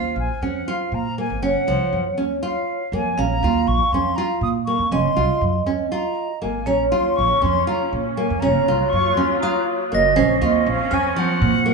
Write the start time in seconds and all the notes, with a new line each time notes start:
Already playing: D#2 F4 C5 F5 F6
0.16 A#1 G#5
0.42 F2 C#4 F#5
0.68 F4 F5
0.92 A#2 A#5
1.18 A#3 G#5
1.30 G#1
1.42 F#1 C#4 C#5 F#5
1.67 C2 F3
1.93 F#2
2.17 D#2 C#4
2.43 F4 F5
2.92 F2 A#3 G#5
3.18 A#1 C#4 F5 A#5
3.43 D#2 F4
3.67 A#1 C#6
3.92 F2 C#4 C6
4.16 F4 A#5
4.41 A#2 D#6
4.66 A#3 C#6
4.79 F2
4.92 F#1 C#4 D#5 C6
5.17 C2 F4
5.41 F#2
5.66 D#2 C#4
5.92 F4 A#5
6.42 G#1 A#3 G#5
6.66 A#1 C#3 A#3 C#4 C#5 A#5
6.90 D#2 F4 C6
7.16 A#1 C#6
7.42 F2 C#4 C6
7.67 F4 A#5
7.93 A#2
8.16 A#3 G#5
8.30 F2
8.40 F#1 C#4 C#5 A#5
8.45 F#3 F4
8.68 C2 F4
8.89 F#2 C#6
9.14 D#2 C#4 C6
9.40 F4 A#5 D#6
9.92 F#1 A#3 D#5 A#6
10.16 A#1 C4 C#4 C5
10.41 D#2 F4 D#5
10.66 A#1 F5
10.91 F2 C#4 G#5 F6
11.16 F3 F#5
11.42 A#2
11.66 A#3